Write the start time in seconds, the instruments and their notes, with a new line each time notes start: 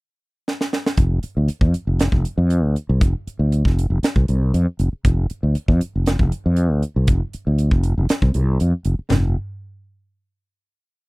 0.48 snare
0.61 snare
0.73 snare
0.86 snare
0.97 fretless electric bass F1, kick, closed hi-hat
1.23 muted fretless electric bass stroke, closed hi-hat
1.37 fretless electric bass D2
1.48 muted fretless electric bass stroke, closed hi-hat
1.61 fretless electric bass F2, kick
1.74 muted fretless electric bass stroke, closed hi-hat
1.87 fretless electric bass F1
1.99 snare, closed hi-hat
2.12 fretless electric bass F1, kick
2.25 closed hi-hat
2.38 fretless electric bass F2
2.50 closed hi-hat
2.64 fretless electric bass D2
2.76 closed hi-hat
2.89 fretless electric bass C2
3.01 fretless electric bass F1, kick, closed hi-hat
3.27 muted fretless electric bass stroke, closed hi-hat
3.39 fretless electric bass D2
3.52 closed hi-hat
3.65 fretless electric bass F1, kick, snare
3.79 closed hi-hat
3.90 fretless electric bass F1
4.03 snare, closed hi-hat
4.16 fretless electric bass C2, kick
4.28 fretless electric bass C2, closed hi-hat
4.54 fretless electric bass F2, closed hi-hat
4.79 fretless electric bass F1, closed hi-hat
4.93 muted fretless electric bass stroke
5.05 fretless electric bass F1, kick, closed hi-hat
5.30 muted fretless electric bass stroke, closed hi-hat
5.43 fretless electric bass D2
5.55 muted fretless electric bass stroke, closed hi-hat
5.68 fretless electric bass F2, kick
5.81 muted fretless electric bass stroke, closed hi-hat
5.96 fretless electric bass F1
6.06 snare, closed hi-hat
6.19 fretless electric bass F1, kick
6.32 closed hi-hat
6.46 fretless electric bass F2
6.57 closed hi-hat
6.71 fretless electric bass D2
6.82 closed hi-hat
6.96 fretless electric bass C2
7.07 fretless electric bass F1, kick, closed hi-hat
7.33 muted fretless electric bass stroke, closed hi-hat
7.47 fretless electric bass D2
7.59 closed hi-hat
7.71 fretless electric bass F1, kick
7.83 closed hi-hat
7.98 fretless electric bass F1
8.09 snare, closed hi-hat
8.22 fretless electric bass C2, kick
8.34 fretless electric bass C2, closed hi-hat
8.60 fretless electric bass F2, closed hi-hat
8.85 fretless electric bass F1, closed hi-hat
8.99 muted fretless electric bass stroke
9.10 fretless electric bass F1, snare, floor tom